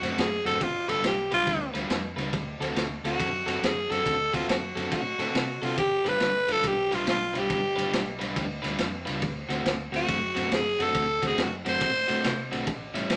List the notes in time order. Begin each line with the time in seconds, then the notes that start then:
Already playing: F#4
0.02 F#2 D3 A3 C4 F#4, snare, ride
0.17 F#2 G#4, snare, ride
0.45 F#2 D3 A3 C4 F#4 A4, snare, ride
0.61 G1 F4, kick, snare, ride
0.88 G1 G3 D4 F4 A4 B4, snare, ride
1.02 B1, snare, ride
1.07 G4
1.31 B1 G3 D4 F4 B4, snare, ride
1.47 D2, kick, snare, ride
1.74 D2 G3 D4 F4 B4, snare, ride
1.89 F2, snare, ride
2.16 C#2 G3 D4 F4 B4, snare, ride
2.33 D2, kick, snare, ride
2.59 D2 D3 C4 F#4 A4, snare, ride
2.75 D2, snare, ride
3.04 D2 D3 C4 F#4 A4, snare, ride
3.20 F#2, kick, snare, ride
3.46 F#2 D3 C4 F#4 A4, snare, ride
3.62 F#2 G#4, snare, ride
3.90 F#2 D3 C4 F#4 A4, snare, ride
4.06 D2, kick, snare, ride
4.33 D2 D3 C4 F4 F#4 A4, kick, snare, ride
4.47 F#2 F#4, snare, ride
4.76 F#2 D3 C4 F#4 A4, snare, ride
4.92 A2 F#4, kick, snare, ride
5.18 A2 D3 C4 F#4 A4, snare, ride
5.35 C3, snare, ride
5.62 C3 D3 C4 F4 F#4 A4, snare, ride
5.77 G1 G4, kick, snare, ride
6.05 G1 G3 D4 F4 B4, snare, ride
6.20 G1, snare, ride
6.48 G1 G3 D4 F4 A4 B4, snare, ride
6.64 B1 G4, kick, snare, ride
6.91 B1 G3 D4 F4 B4, snare, ride
7.07 B1 F4, snare, ride
7.34 B1 G3 D4 F4 B4, snare, ride
7.38 G4
7.50 G1, kick, snare, ride
7.76 G1 G3 D4 F4 B4, snare, ride
7.93 B1, snare, ride
8.19 B1 G3 D4 F4 B4, snare, ride
8.36 D2, kick, snare, ride
8.62 D2 G3 D4 F4 B4, snare, ride
8.78 F2, snare, ride
9.06 C#2 G3 D4 F4 B4, snare, ride
9.22 D2, kick, snare, ride
9.49 D2 D3 A3 C4 F#4, snare, ride
9.65 D2, snare, ride
9.92 D2 D3 A3 C4 F#4, snare, ride
9.96 F#4
10.08 F#2, kick, snare, ride
10.35 F#2 D3 A3 C4 F#4, snare, ride
10.52 F#2 G#4, snare, ride
10.79 F#2 D3 A3 C4 F#4 A4, snare, ride
10.94 D2, kick, snare, ride
11.22 D2 D3 A3 C4 F#4, kick, snare, ride
11.27 G#4
11.37 F#2, snare, ride
11.43 F#4
11.65 F#2 D3 A3 C4 F#4 C5, snare, ride
11.81 A2, kick, snare, ride
12.08 A2 D3 A3 C4 F#4, snare, ride
12.24 C3, snare, ride
12.51 B1 D3 A3 C4 F#4, snare, ride
12.67 A1, kick, snare, ride
12.94 A1 A2 G3 C#4 E4, snare, ride
13.10 A1, snare, ride